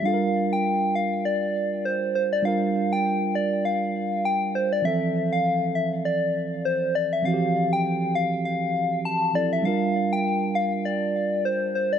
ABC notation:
X:1
M:4/4
L:1/16
Q:"Swing 16ths" 1/4=100
K:Gdor
V:1 name="Soft synth lead"
f3 g3 f2 d4 c2 c d | f3 g3 d2 f4 g2 c d | e3 f3 e2 d4 c2 d e | f3 g3 f2 f4 a2 d e |
f3 g3 f2 d4 c2 c d |]
V:2 name="Tine electric piano"
[G,DFAB]16 | [G,DFB]16 | [E,F,CA]16 | [E,F,C_G=G]12- [E,F,C_G=G]2 [F,CEA]2 |
[G,DFB]16 |]